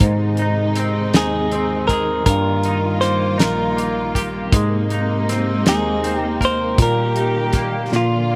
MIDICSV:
0, 0, Header, 1, 6, 480
1, 0, Start_track
1, 0, Key_signature, -3, "major"
1, 0, Tempo, 752823
1, 10, Time_signature, 6, 3, 24, 8
1, 5327, End_track
2, 0, Start_track
2, 0, Title_t, "Clean electric guitar"
2, 0, Program_c, 0, 27
2, 743, Note_on_c, 0, 68, 70
2, 1193, Note_off_c, 0, 68, 0
2, 1196, Note_on_c, 0, 70, 89
2, 1433, Note_off_c, 0, 70, 0
2, 1441, Note_on_c, 0, 70, 85
2, 1916, Note_off_c, 0, 70, 0
2, 1919, Note_on_c, 0, 72, 96
2, 2166, Note_off_c, 0, 72, 0
2, 2168, Note_on_c, 0, 70, 70
2, 2682, Note_off_c, 0, 70, 0
2, 3626, Note_on_c, 0, 68, 69
2, 3932, Note_off_c, 0, 68, 0
2, 3932, Note_on_c, 0, 67, 69
2, 4072, Note_off_c, 0, 67, 0
2, 4112, Note_on_c, 0, 72, 95
2, 4324, Note_off_c, 0, 72, 0
2, 4351, Note_on_c, 0, 70, 78
2, 5076, Note_on_c, 0, 65, 67
2, 5276, Note_off_c, 0, 70, 0
2, 5327, Note_off_c, 0, 65, 0
2, 5327, End_track
3, 0, Start_track
3, 0, Title_t, "Clean electric guitar"
3, 0, Program_c, 1, 27
3, 11, Note_on_c, 1, 44, 75
3, 251, Note_on_c, 1, 63, 61
3, 489, Note_on_c, 1, 60, 51
3, 724, Note_off_c, 1, 63, 0
3, 727, Note_on_c, 1, 63, 60
3, 963, Note_off_c, 1, 60, 0
3, 971, Note_on_c, 1, 60, 55
3, 1213, Note_on_c, 1, 68, 60
3, 1445, Note_off_c, 1, 44, 0
3, 1447, Note_on_c, 1, 43, 80
3, 1497, Note_off_c, 1, 60, 0
3, 1498, Note_off_c, 1, 68, 0
3, 1690, Note_off_c, 1, 63, 0
3, 1692, Note_on_c, 1, 63, 60
3, 1929, Note_on_c, 1, 58, 53
3, 2152, Note_off_c, 1, 63, 0
3, 2154, Note_on_c, 1, 63, 65
3, 2399, Note_off_c, 1, 58, 0
3, 2402, Note_on_c, 1, 58, 53
3, 2646, Note_on_c, 1, 67, 65
3, 2886, Note_off_c, 1, 43, 0
3, 2892, Note_on_c, 1, 56, 81
3, 2934, Note_off_c, 1, 67, 0
3, 3132, Note_off_c, 1, 63, 0
3, 3135, Note_on_c, 1, 63, 56
3, 3373, Note_off_c, 1, 58, 0
3, 3375, Note_on_c, 1, 60, 57
3, 3610, Note_off_c, 1, 63, 0
3, 3613, Note_on_c, 1, 63, 61
3, 3843, Note_off_c, 1, 60, 0
3, 3851, Note_on_c, 1, 60, 60
3, 4087, Note_on_c, 1, 70, 64
3, 4331, Note_off_c, 1, 56, 0
3, 4333, Note_on_c, 1, 46, 82
3, 4378, Note_off_c, 1, 60, 0
3, 4379, Note_off_c, 1, 63, 0
3, 4572, Note_on_c, 1, 63, 56
3, 4815, Note_on_c, 1, 58, 50
3, 5047, Note_off_c, 1, 46, 0
3, 5055, Note_on_c, 1, 46, 78
3, 5099, Note_off_c, 1, 63, 0
3, 5101, Note_off_c, 1, 58, 0
3, 5300, Note_on_c, 1, 58, 52
3, 5327, Note_off_c, 1, 46, 0
3, 5327, Note_off_c, 1, 58, 0
3, 5327, Note_off_c, 1, 70, 0
3, 5327, End_track
4, 0, Start_track
4, 0, Title_t, "String section"
4, 0, Program_c, 2, 48
4, 0, Note_on_c, 2, 48, 72
4, 0, Note_on_c, 2, 51, 59
4, 0, Note_on_c, 2, 56, 67
4, 0, Note_on_c, 2, 63, 78
4, 1422, Note_off_c, 2, 56, 0
4, 1423, Note_off_c, 2, 48, 0
4, 1426, Note_off_c, 2, 63, 0
4, 1442, Note_on_c, 2, 58, 60
4, 1445, Note_on_c, 2, 65, 74
4, 1450, Note_on_c, 2, 55, 64
4, 2850, Note_off_c, 2, 51, 0
4, 2871, Note_off_c, 2, 65, 0
4, 2874, Note_off_c, 2, 55, 0
4, 2877, Note_on_c, 2, 48, 68
4, 2881, Note_on_c, 2, 56, 70
4, 2885, Note_on_c, 2, 63, 75
4, 4309, Note_off_c, 2, 48, 0
4, 4311, Note_off_c, 2, 56, 0
4, 4313, Note_off_c, 2, 63, 0
4, 4319, Note_on_c, 2, 55, 62
4, 4320, Note_on_c, 2, 51, 67
4, 4320, Note_on_c, 2, 67, 75
4, 5030, Note_on_c, 2, 50, 73
4, 5034, Note_on_c, 2, 53, 58
4, 5034, Note_on_c, 2, 65, 78
4, 5038, Note_off_c, 2, 55, 0
4, 5038, Note_off_c, 2, 67, 0
4, 5039, Note_off_c, 2, 51, 0
4, 5327, Note_off_c, 2, 50, 0
4, 5327, Note_off_c, 2, 53, 0
4, 5327, Note_off_c, 2, 58, 0
4, 5327, Note_off_c, 2, 65, 0
4, 5327, End_track
5, 0, Start_track
5, 0, Title_t, "Tine electric piano"
5, 0, Program_c, 3, 4
5, 4, Note_on_c, 3, 44, 104
5, 700, Note_off_c, 3, 44, 0
5, 728, Note_on_c, 3, 39, 72
5, 1421, Note_off_c, 3, 39, 0
5, 1442, Note_on_c, 3, 43, 87
5, 2138, Note_off_c, 3, 43, 0
5, 2163, Note_on_c, 3, 34, 82
5, 2859, Note_off_c, 3, 34, 0
5, 2886, Note_on_c, 3, 44, 94
5, 3581, Note_off_c, 3, 44, 0
5, 3608, Note_on_c, 3, 39, 85
5, 4303, Note_off_c, 3, 39, 0
5, 4326, Note_on_c, 3, 46, 101
5, 5023, Note_off_c, 3, 46, 0
5, 5051, Note_on_c, 3, 46, 91
5, 5327, Note_off_c, 3, 46, 0
5, 5327, End_track
6, 0, Start_track
6, 0, Title_t, "Drums"
6, 0, Note_on_c, 9, 42, 102
6, 4, Note_on_c, 9, 36, 112
6, 63, Note_off_c, 9, 42, 0
6, 68, Note_off_c, 9, 36, 0
6, 237, Note_on_c, 9, 42, 44
6, 301, Note_off_c, 9, 42, 0
6, 481, Note_on_c, 9, 42, 72
6, 545, Note_off_c, 9, 42, 0
6, 724, Note_on_c, 9, 42, 77
6, 729, Note_on_c, 9, 38, 105
6, 788, Note_off_c, 9, 42, 0
6, 793, Note_off_c, 9, 38, 0
6, 966, Note_on_c, 9, 42, 58
6, 1030, Note_off_c, 9, 42, 0
6, 1204, Note_on_c, 9, 36, 74
6, 1207, Note_on_c, 9, 42, 65
6, 1268, Note_off_c, 9, 36, 0
6, 1271, Note_off_c, 9, 42, 0
6, 1441, Note_on_c, 9, 42, 98
6, 1442, Note_on_c, 9, 36, 102
6, 1505, Note_off_c, 9, 42, 0
6, 1506, Note_off_c, 9, 36, 0
6, 1680, Note_on_c, 9, 42, 49
6, 1743, Note_off_c, 9, 42, 0
6, 1923, Note_on_c, 9, 42, 70
6, 1928, Note_on_c, 9, 38, 36
6, 1986, Note_off_c, 9, 42, 0
6, 1992, Note_off_c, 9, 38, 0
6, 2164, Note_on_c, 9, 42, 77
6, 2169, Note_on_c, 9, 38, 97
6, 2228, Note_off_c, 9, 42, 0
6, 2233, Note_off_c, 9, 38, 0
6, 2412, Note_on_c, 9, 42, 61
6, 2476, Note_off_c, 9, 42, 0
6, 2647, Note_on_c, 9, 36, 75
6, 2652, Note_on_c, 9, 42, 70
6, 2711, Note_off_c, 9, 36, 0
6, 2716, Note_off_c, 9, 42, 0
6, 2885, Note_on_c, 9, 36, 119
6, 2886, Note_on_c, 9, 42, 96
6, 2949, Note_off_c, 9, 36, 0
6, 2950, Note_off_c, 9, 42, 0
6, 3127, Note_on_c, 9, 42, 48
6, 3190, Note_off_c, 9, 42, 0
6, 3374, Note_on_c, 9, 42, 65
6, 3379, Note_on_c, 9, 38, 38
6, 3438, Note_off_c, 9, 42, 0
6, 3443, Note_off_c, 9, 38, 0
6, 3608, Note_on_c, 9, 42, 83
6, 3613, Note_on_c, 9, 38, 115
6, 3672, Note_off_c, 9, 42, 0
6, 3677, Note_off_c, 9, 38, 0
6, 3851, Note_on_c, 9, 42, 58
6, 3915, Note_off_c, 9, 42, 0
6, 4086, Note_on_c, 9, 36, 76
6, 4093, Note_on_c, 9, 42, 62
6, 4150, Note_off_c, 9, 36, 0
6, 4157, Note_off_c, 9, 42, 0
6, 4325, Note_on_c, 9, 36, 112
6, 4325, Note_on_c, 9, 42, 89
6, 4389, Note_off_c, 9, 36, 0
6, 4389, Note_off_c, 9, 42, 0
6, 4563, Note_on_c, 9, 42, 48
6, 4627, Note_off_c, 9, 42, 0
6, 4799, Note_on_c, 9, 42, 75
6, 4804, Note_on_c, 9, 36, 83
6, 4804, Note_on_c, 9, 38, 32
6, 4862, Note_off_c, 9, 42, 0
6, 4868, Note_off_c, 9, 36, 0
6, 4868, Note_off_c, 9, 38, 0
6, 5050, Note_on_c, 9, 38, 50
6, 5114, Note_off_c, 9, 38, 0
6, 5327, End_track
0, 0, End_of_file